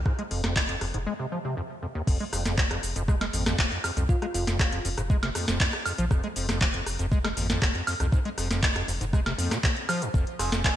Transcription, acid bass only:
0.06 0.13 G#2 medium
0.19 0.23 G#3 loud
0.31 0.42 F2 medium
0.44 0.54 F2 loud
0.69 0.76 F2 loud
0.81 0.86 F2 medium
0.94 0.98 G#2 medium
1.07 1.14 G#3 loud
1.19 1.26 C3 medium
1.32 1.39 F3 medium
1.45 1.55 C3 medium
1.57 1.61 F2 loud
1.82 1.87 F2 medium
1.95 2.02 D#2 loud
2.08 2.18 F2 medium
2.20 2.24 G#3 loud
2.33 2.43 F2 medium
2.46 2.56 F2 loud
2.58 2.62 F3 medium
2.71 2.78 F2 loud
2.96 3.03 F2 loud
3.08 3.15 G#3 loud
3.21 3.25 G#3 loud
3.34 3.44 F2 medium
3.46 3.57 F2 loud
3.72 3.78 F2 loud
3.84 3.91 F2 medium
3.97 4.04 F2 loud
4.09 4.16 G#2 medium
4.22 4.26 G#3 loud
4.34 4.45 F2 medium
4.47 4.58 F2 loud
4.72 4.79 F2 loud
4.85 4.89 F2 medium
4.98 5.02 G#2 medium
5.10 5.17 G#3 loud
5.23 5.30 C3 medium
5.35 5.46 F2 medium
5.48 5.58 F2 loud
5.86 5.93 F2 medium
5.98 6.05 F3 medium
6.11 6.21 F2 medium
6.24 6.28 G#3 loud
6.36 6.47 F2 medium
6.49 6.59 F2 loud
6.61 6.66 F3 medium
6.74 6.81 F2 loud
6.99 7.06 F2 loud
7.12 7.19 G#3 loud
7.24 7.29 G#3 loud
7.37 7.47 F2 medium
7.50 7.60 F2 loud
7.75 7.82 F2 loud
7.87 7.94 F2 medium
8.00 8.07 F2 loud
8.13 8.20 G#2 medium
8.25 8.29 G#3 loud
8.38 8.48 F2 medium
8.51 8.61 F2 loud
8.76 8.83 F2 loud
8.88 8.92 F2 medium
9.01 9.05 G#2 medium
9.13 9.20 G#3 loud
9.26 9.33 C3 medium
9.38 9.53 F2 loud
9.51 9.58 C3 medium
9.64 9.68 C3 medium
9.89 10.03 F3 loud
10.02 10.09 F2 loud
10.14 10.25 F2 medium
10.39 10.50 F2 medium
10.52 10.62 F2 loud
10.65 10.69 F3 medium

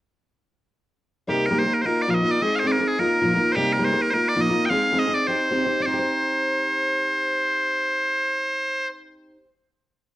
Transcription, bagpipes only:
1.29 1.46 G4 medium
1.46 1.59 A#4 medium
1.59 1.74 C5 medium
1.74 1.82 A#4 medium
1.82 1.86 C5 medium
1.86 2.02 A#4 medium
2.02 2.10 D5 medium
2.10 2.31 D#5 medium
2.10 2.14 F5 medium
2.31 2.42 D5 medium
2.42 2.56 D#5 medium
2.56 2.68 C5 medium
2.56 2.59 F5 medium
2.67 2.72 D5 medium
2.72 2.83 A#4 medium
2.83 2.88 A#4 soft
2.88 2.99 G#4 medium
2.99 3.52 A#4 medium
3.52 3.73 G4 medium
3.52 3.55 C5 medium
3.73 3.84 A#4 medium
3.84 4.02 C5 medium
4.02 4.11 A#4 medium
4.11 4.29 A#4 medium
4.11 4.14 C5 medium
4.29 4.41 D5 medium
4.41 4.66 D#5 medium
4.66 4.70 G5 medium
4.70 4.99 F5 medium
4.99 5.15 D#5 medium
5.15 5.27 D5 medium
5.27 5.82 C5 medium
5.82 8.88 C5 medium
5.82 5.86 D5 medium

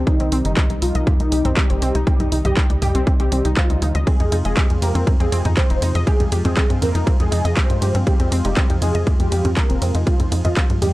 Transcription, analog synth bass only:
0.20 0.30 C2 medium
0.32 0.43 C2 loud
0.45 0.55 G1 medium
0.70 0.80 C2 medium
0.82 0.93 C2 loud
0.95 1.05 C2 loud
1.20 1.30 C2 medium
1.32 1.43 C2 loud
1.45 1.55 C2 medium
1.70 1.80 G1 medium
1.82 1.93 C2 loud
1.95 2.05 C2 medium
2.20 2.30 C2 medium
2.32 2.43 C2 loud
2.45 2.55 C2 medium
2.70 2.80 D2 medium
2.82 2.93 C2 loud
2.95 3.05 C2 medium
3.20 3.30 C2 medium
3.32 3.43 C2 loud
3.45 3.55 C2 medium
3.70 3.80 D2 medium
3.82 3.93 D2 loud
3.95 4.05 D2 loud
4.20 4.30 F2 medium
4.32 4.43 F2 loud
4.45 4.55 F1 medium
4.70 4.80 F2 medium
4.82 4.93 F2 loud
4.95 5.05 F2 medium
5.20 5.30 F2 medium
5.32 5.43 F2 loud
5.45 5.55 F2 medium
5.70 5.80 F1 medium
5.82 5.93 F2 loud
5.95 6.05 F2 loud
6.20 6.30 F2 medium
6.32 6.43 F2 loud
6.45 6.55 F2 medium
6.70 6.80 G2 medium
6.82 6.93 F2 loud
6.95 7.05 F2 medium
7.20 7.30 F2 medium
7.32 7.43 F2 loud
7.45 7.55 F2 medium
7.70 7.80 G2 medium
7.82 7.93 G2 loud
7.95 8.05 G2 medium
8.20 8.30 F2 medium
8.32 8.43 F2 loud
8.45 8.55 F1 medium
8.70 8.80 F2 medium
8.82 8.93 F2 loud
8.95 9.05 F2 medium
9.20 9.30 F2 medium
9.32 9.43 F2 loud
9.45 9.55 F2 medium
9.70 9.80 F1 medium
9.82 9.93 F2 loud
9.95 10.05 F2 medium
10.20 10.30 F2 medium
10.32 10.43 F2 loud
10.45 10.55 F2 medium
10.70 10.80 G2 medium
10.82 10.93 F2 loud

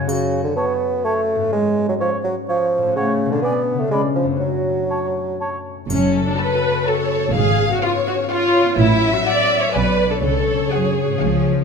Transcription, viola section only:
5.90 6.24 C#4 medium
6.27 6.39 D4 soft
6.39 6.86 B4 medium
6.88 7.36 A4 medium
7.35 7.71 G#4 medium
7.72 7.83 F#4 medium
7.84 7.92 F4 medium
8.07 8.15 F#4 medium
8.32 8.78 F4 medium
8.79 9.14 E4 medium
9.16 9.27 F#4 soft
9.28 9.62 D5 medium
9.63 9.75 C#5 medium
9.75 10.10 B4 medium
10.11 10.16 A4 soft
10.23 10.70 A4 medium
10.72 11.45 G#4 soft

